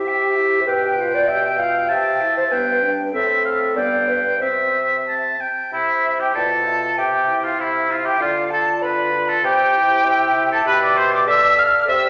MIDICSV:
0, 0, Header, 1, 6, 480
1, 0, Start_track
1, 0, Key_signature, 0, "major"
1, 0, Tempo, 617284
1, 529, Time_signature, 2, 2, 24, 8
1, 2930, Tempo, 642398
1, 5330, Tempo, 612245
1, 9340, End_track
2, 0, Start_track
2, 0, Title_t, "Flute"
2, 0, Program_c, 0, 73
2, 56, Note_on_c, 0, 79, 38
2, 287, Note_on_c, 0, 76, 41
2, 299, Note_off_c, 0, 79, 0
2, 527, Note_off_c, 0, 76, 0
2, 539, Note_on_c, 0, 79, 51
2, 777, Note_on_c, 0, 77, 45
2, 788, Note_off_c, 0, 79, 0
2, 1003, Note_on_c, 0, 79, 44
2, 1014, Note_off_c, 0, 77, 0
2, 1243, Note_on_c, 0, 77, 45
2, 1254, Note_off_c, 0, 79, 0
2, 1473, Note_off_c, 0, 77, 0
2, 1478, Note_on_c, 0, 79, 53
2, 1713, Note_on_c, 0, 76, 47
2, 1725, Note_off_c, 0, 79, 0
2, 1948, Note_off_c, 0, 76, 0
2, 1953, Note_on_c, 0, 77, 42
2, 2204, Note_on_c, 0, 79, 47
2, 2215, Note_off_c, 0, 77, 0
2, 2444, Note_off_c, 0, 79, 0
2, 2448, Note_on_c, 0, 76, 54
2, 2713, Note_off_c, 0, 76, 0
2, 2930, Note_on_c, 0, 77, 49
2, 3404, Note_off_c, 0, 77, 0
2, 3409, Note_on_c, 0, 76, 49
2, 4131, Note_off_c, 0, 76, 0
2, 4385, Note_on_c, 0, 76, 66
2, 4719, Note_off_c, 0, 76, 0
2, 4750, Note_on_c, 0, 79, 57
2, 4851, Note_off_c, 0, 79, 0
2, 4855, Note_on_c, 0, 81, 68
2, 5324, Note_on_c, 0, 79, 59
2, 5335, Note_off_c, 0, 81, 0
2, 5690, Note_off_c, 0, 79, 0
2, 5698, Note_on_c, 0, 77, 62
2, 5814, Note_off_c, 0, 77, 0
2, 5821, Note_on_c, 0, 76, 62
2, 6056, Note_on_c, 0, 77, 60
2, 6068, Note_off_c, 0, 76, 0
2, 6178, Note_off_c, 0, 77, 0
2, 6184, Note_on_c, 0, 79, 70
2, 6283, Note_on_c, 0, 77, 77
2, 6295, Note_off_c, 0, 79, 0
2, 6521, Note_on_c, 0, 81, 80
2, 6533, Note_off_c, 0, 77, 0
2, 6773, Note_on_c, 0, 83, 66
2, 6785, Note_off_c, 0, 81, 0
2, 7129, Note_on_c, 0, 81, 75
2, 7140, Note_off_c, 0, 83, 0
2, 7250, Note_off_c, 0, 81, 0
2, 7254, Note_on_c, 0, 79, 97
2, 8080, Note_off_c, 0, 79, 0
2, 8104, Note_on_c, 0, 81, 89
2, 8207, Note_off_c, 0, 81, 0
2, 8212, Note_on_c, 0, 83, 112
2, 8259, Note_off_c, 0, 83, 0
2, 8346, Note_on_c, 0, 86, 93
2, 8447, Note_on_c, 0, 84, 108
2, 8459, Note_off_c, 0, 86, 0
2, 8571, Note_off_c, 0, 84, 0
2, 8590, Note_on_c, 0, 86, 104
2, 8637, Note_off_c, 0, 86, 0
2, 8699, Note_on_c, 0, 88, 103
2, 8934, Note_on_c, 0, 89, 98
2, 8945, Note_off_c, 0, 88, 0
2, 9156, Note_off_c, 0, 89, 0
2, 9161, Note_on_c, 0, 88, 109
2, 9340, Note_off_c, 0, 88, 0
2, 9340, End_track
3, 0, Start_track
3, 0, Title_t, "Clarinet"
3, 0, Program_c, 1, 71
3, 0, Note_on_c, 1, 67, 65
3, 473, Note_on_c, 1, 72, 57
3, 485, Note_off_c, 1, 67, 0
3, 519, Note_on_c, 1, 71, 76
3, 530, Note_off_c, 1, 72, 0
3, 891, Note_on_c, 1, 74, 72
3, 903, Note_off_c, 1, 71, 0
3, 995, Note_on_c, 1, 76, 79
3, 1006, Note_off_c, 1, 74, 0
3, 1234, Note_on_c, 1, 77, 77
3, 1246, Note_off_c, 1, 76, 0
3, 1472, Note_off_c, 1, 77, 0
3, 1477, Note_on_c, 1, 76, 76
3, 1830, Note_off_c, 1, 76, 0
3, 1844, Note_on_c, 1, 72, 69
3, 1897, Note_off_c, 1, 72, 0
3, 1948, Note_on_c, 1, 71, 76
3, 2262, Note_off_c, 1, 71, 0
3, 2440, Note_on_c, 1, 69, 75
3, 2924, Note_on_c, 1, 74, 72
3, 2936, Note_off_c, 1, 69, 0
3, 3166, Note_on_c, 1, 71, 62
3, 3177, Note_off_c, 1, 74, 0
3, 3400, Note_off_c, 1, 71, 0
3, 3405, Note_on_c, 1, 72, 52
3, 3890, Note_off_c, 1, 72, 0
3, 4388, Note_on_c, 1, 72, 48
3, 4833, Note_off_c, 1, 72, 0
3, 4861, Note_on_c, 1, 74, 54
3, 4967, Note_off_c, 1, 74, 0
3, 5095, Note_on_c, 1, 76, 53
3, 5325, Note_off_c, 1, 76, 0
3, 5330, Note_on_c, 1, 76, 59
3, 6278, Note_off_c, 1, 76, 0
3, 6306, Note_on_c, 1, 74, 64
3, 6773, Note_on_c, 1, 71, 62
3, 6785, Note_off_c, 1, 74, 0
3, 7256, Note_on_c, 1, 72, 70
3, 7268, Note_off_c, 1, 71, 0
3, 7733, Note_on_c, 1, 76, 90
3, 7745, Note_off_c, 1, 72, 0
3, 8686, Note_off_c, 1, 76, 0
3, 8690, Note_on_c, 1, 74, 89
3, 9159, Note_off_c, 1, 74, 0
3, 9171, Note_on_c, 1, 72, 77
3, 9340, Note_off_c, 1, 72, 0
3, 9340, End_track
4, 0, Start_track
4, 0, Title_t, "Oboe"
4, 0, Program_c, 2, 68
4, 44, Note_on_c, 2, 76, 51
4, 516, Note_off_c, 2, 76, 0
4, 520, Note_on_c, 2, 79, 61
4, 1468, Note_on_c, 2, 81, 63
4, 1480, Note_off_c, 2, 79, 0
4, 1956, Note_on_c, 2, 79, 58
4, 1968, Note_off_c, 2, 81, 0
4, 2272, Note_off_c, 2, 79, 0
4, 2442, Note_on_c, 2, 76, 53
4, 2668, Note_off_c, 2, 76, 0
4, 2683, Note_on_c, 2, 77, 54
4, 2794, Note_off_c, 2, 77, 0
4, 2931, Note_on_c, 2, 79, 54
4, 3402, Note_off_c, 2, 79, 0
4, 3414, Note_on_c, 2, 76, 48
4, 3846, Note_off_c, 2, 76, 0
4, 3910, Note_on_c, 2, 81, 47
4, 4153, Note_on_c, 2, 79, 42
4, 4164, Note_off_c, 2, 81, 0
4, 4387, Note_off_c, 2, 79, 0
4, 4391, Note_on_c, 2, 64, 60
4, 4743, Note_on_c, 2, 67, 54
4, 4754, Note_off_c, 2, 64, 0
4, 4856, Note_on_c, 2, 69, 65
4, 4867, Note_off_c, 2, 67, 0
4, 5325, Note_off_c, 2, 69, 0
4, 5330, Note_on_c, 2, 67, 52
4, 5689, Note_on_c, 2, 65, 47
4, 5701, Note_off_c, 2, 67, 0
4, 5812, Note_on_c, 2, 64, 54
4, 5824, Note_off_c, 2, 65, 0
4, 6060, Note_on_c, 2, 65, 55
4, 6071, Note_off_c, 2, 64, 0
4, 6173, Note_on_c, 2, 67, 56
4, 6185, Note_off_c, 2, 65, 0
4, 6296, Note_off_c, 2, 67, 0
4, 6299, Note_on_c, 2, 65, 63
4, 6407, Note_off_c, 2, 65, 0
4, 6544, Note_on_c, 2, 69, 64
4, 6650, Note_off_c, 2, 69, 0
4, 6784, Note_on_c, 2, 71, 58
4, 7140, Note_on_c, 2, 69, 68
4, 7152, Note_off_c, 2, 71, 0
4, 7261, Note_on_c, 2, 67, 81
4, 7273, Note_off_c, 2, 69, 0
4, 8100, Note_off_c, 2, 67, 0
4, 8104, Note_on_c, 2, 69, 72
4, 8157, Note_off_c, 2, 69, 0
4, 8220, Note_on_c, 2, 71, 100
4, 8336, Note_off_c, 2, 71, 0
4, 8339, Note_on_c, 2, 74, 86
4, 8459, Note_on_c, 2, 72, 87
4, 8470, Note_off_c, 2, 74, 0
4, 8575, Note_on_c, 2, 74, 79
4, 8587, Note_off_c, 2, 72, 0
4, 8695, Note_on_c, 2, 76, 91
4, 8707, Note_off_c, 2, 74, 0
4, 8933, Note_off_c, 2, 76, 0
4, 8942, Note_on_c, 2, 77, 89
4, 9047, Note_off_c, 2, 77, 0
4, 9178, Note_on_c, 2, 76, 98
4, 9285, Note_off_c, 2, 76, 0
4, 9340, End_track
5, 0, Start_track
5, 0, Title_t, "French horn"
5, 0, Program_c, 3, 60
5, 47, Note_on_c, 3, 67, 47
5, 281, Note_on_c, 3, 64, 44
5, 293, Note_off_c, 3, 67, 0
5, 514, Note_off_c, 3, 64, 0
5, 518, Note_on_c, 3, 67, 53
5, 758, Note_on_c, 3, 65, 46
5, 770, Note_off_c, 3, 67, 0
5, 1000, Note_on_c, 3, 67, 47
5, 1012, Note_off_c, 3, 65, 0
5, 1235, Note_on_c, 3, 65, 47
5, 1247, Note_off_c, 3, 67, 0
5, 1472, Note_off_c, 3, 65, 0
5, 1477, Note_on_c, 3, 67, 53
5, 1719, Note_on_c, 3, 64, 52
5, 1731, Note_off_c, 3, 67, 0
5, 1950, Note_off_c, 3, 64, 0
5, 1955, Note_on_c, 3, 59, 50
5, 2196, Note_on_c, 3, 62, 47
5, 2208, Note_off_c, 3, 59, 0
5, 2433, Note_off_c, 3, 62, 0
5, 2438, Note_on_c, 3, 60, 56
5, 2935, Note_on_c, 3, 59, 53
5, 2946, Note_off_c, 3, 60, 0
5, 3285, Note_off_c, 3, 59, 0
5, 3412, Note_on_c, 3, 60, 48
5, 4133, Note_off_c, 3, 60, 0
5, 4627, Note_on_c, 3, 64, 46
5, 4858, Note_off_c, 3, 64, 0
5, 4863, Note_on_c, 3, 65, 42
5, 5087, Note_off_c, 3, 65, 0
5, 5092, Note_on_c, 3, 65, 44
5, 5323, Note_off_c, 3, 65, 0
5, 5568, Note_on_c, 3, 64, 48
5, 6044, Note_off_c, 3, 64, 0
5, 6059, Note_on_c, 3, 64, 53
5, 6287, Note_off_c, 3, 64, 0
5, 6292, Note_on_c, 3, 65, 55
5, 6527, Note_off_c, 3, 65, 0
5, 6532, Note_on_c, 3, 65, 57
5, 7003, Note_off_c, 3, 65, 0
5, 7020, Note_on_c, 3, 65, 56
5, 7255, Note_off_c, 3, 65, 0
5, 7495, Note_on_c, 3, 64, 64
5, 7967, Note_off_c, 3, 64, 0
5, 7977, Note_on_c, 3, 64, 65
5, 8210, Note_off_c, 3, 64, 0
5, 8214, Note_on_c, 3, 67, 73
5, 8696, Note_on_c, 3, 69, 76
5, 8708, Note_off_c, 3, 67, 0
5, 9166, Note_off_c, 3, 69, 0
5, 9170, Note_on_c, 3, 67, 77
5, 9340, Note_off_c, 3, 67, 0
5, 9340, End_track
6, 0, Start_track
6, 0, Title_t, "Bassoon"
6, 0, Program_c, 4, 70
6, 0, Note_on_c, 4, 48, 45
6, 505, Note_off_c, 4, 48, 0
6, 523, Note_on_c, 4, 47, 49
6, 1479, Note_on_c, 4, 48, 53
6, 1491, Note_off_c, 4, 47, 0
6, 1790, Note_off_c, 4, 48, 0
6, 1964, Note_on_c, 4, 43, 58
6, 2414, Note_off_c, 4, 43, 0
6, 2444, Note_on_c, 4, 45, 50
6, 2900, Note_off_c, 4, 45, 0
6, 2926, Note_on_c, 4, 43, 56
6, 3412, Note_on_c, 4, 48, 49
6, 3423, Note_off_c, 4, 43, 0
6, 4148, Note_off_c, 4, 48, 0
6, 4388, Note_on_c, 4, 48, 53
6, 4807, Note_off_c, 4, 48, 0
6, 4864, Note_on_c, 4, 47, 53
6, 5277, Note_off_c, 4, 47, 0
6, 5328, Note_on_c, 4, 48, 58
6, 5756, Note_off_c, 4, 48, 0
6, 5810, Note_on_c, 4, 48, 58
6, 6239, Note_off_c, 4, 48, 0
6, 6289, Note_on_c, 4, 50, 66
6, 6714, Note_off_c, 4, 50, 0
6, 6775, Note_on_c, 4, 50, 65
6, 7200, Note_off_c, 4, 50, 0
6, 7248, Note_on_c, 4, 48, 74
6, 7677, Note_off_c, 4, 48, 0
6, 7736, Note_on_c, 4, 48, 75
6, 8160, Note_off_c, 4, 48, 0
6, 8212, Note_on_c, 4, 47, 73
6, 9039, Note_off_c, 4, 47, 0
6, 9172, Note_on_c, 4, 48, 81
6, 9340, Note_off_c, 4, 48, 0
6, 9340, End_track
0, 0, End_of_file